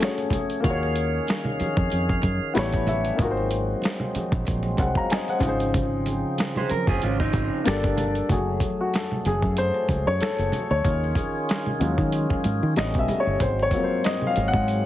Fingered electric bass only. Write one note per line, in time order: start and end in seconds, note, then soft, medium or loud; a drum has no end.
0.65 1.18 D#2 medium
1.61 muted fingered electric bass stroke soft
1.77 1.89 F2 medium
1.93 2.19 F2 medium
2.24 2.39 F#2 medium
2.56 3.10 A1 medium
3.19 3.73 G#1 medium
4.15 muted fingered electric bass stroke soft
4.33 4.45 A#1 loud
4.48 4.75 A#1 medium
4.79 4.94 C2 medium
5.41 6.23 G#1 loud
6.71 muted fingered electric bass stroke soft
6.88 7.00 F#1 medium
7.03 7.30 G#1 medium
7.34 7.49 G#1 medium
7.67 8.20 G1 loud
8.30 8.57 F#1 medium
9.26 9.41 F#1 medium
9.43 9.70 F#2 medium
9.89 10.04 C#2 medium
10.07 10.19 F#2 medium
10.21 muted fingered electric bass stroke soft
10.39 10.51 F#1 medium
10.71 10.83 D2 medium
10.85 11.12 D#2 medium
11.81 11.96 D#2 medium
11.98 12.25 D#3 medium
12.45 12.60 G#2 medium
12.63 12.75 D#3 medium
12.77 12.92 A1 loud
12.95 13.07 B1 medium
13.27 13.39 G1 medium
13.41 13.68 G#1 medium
14.37 14.52 G#1 medium
14.54 14.81 G#2 medium